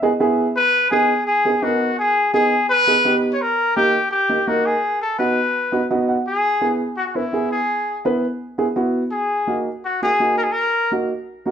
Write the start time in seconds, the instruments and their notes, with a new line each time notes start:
0.02 upright piano B3 E4 G#4 D#5
0.20 upright piano B3 E4 G#4 E5
0.56 trumpet B4
0.91 upright piano B3 D#4 G#4, trumpet G#4
1.27 trumpet G#4
1.45 upright piano B3 D#4 G#4
1.62 upright piano B3 D#4 A#4, trumpet F#4
1.99 trumpet G#4
2.33 upright piano B3 D#4 G#4, trumpet G#4
2.69 trumpet B4
2.87 upright piano B3 D#4 G#4
3.05 upright piano B3 D#4 G4
3.33 trumpet C#5
3.41 trumpet A#4
3.76 upright piano A#3 D#4 G4, trumpet G4
4.11 trumpet G4
4.29 upright piano A#3 D#4 G4
4.47 upright piano A#3 D#4 A#4, trumpet F#4
4.66 trumpet G#4
5.01 trumpet A4
5.19 upright piano B3 D#4 F#4, trumpet B4
5.72 upright piano B3 D#4 F#4
5.91 upright piano B3 D#4 F#4 D#5
6.09 upright piano F#5
6.27 trumpet G#4
6.61 upright piano B3 E4 G#4
6.97 trumpet F#4
7.07 trumpet F#4
7.15 upright piano B3 E4 B4, trumpet E4
7.33 upright piano B3 E4 G#4
7.51 trumpet G#4
8.05 upright piano B3 E4 B4
8.58 upright piano B3 E4 G#4
8.76 upright piano B3 E4 F#4
9.11 trumpet G#4
9.47 upright piano A#3 D#4 F#4
9.85 trumpet F#4
10.02 upright piano A#3 D#4 F#4, trumpet G#4
10.20 upright piano A#3 D#4 F#4
10.38 trumpet A#4
10.44 trumpet G#4
10.52 trumpet A#4
10.91 upright piano A#3 D#4 F#4
11.46 upright piano A#3 D#4 F#4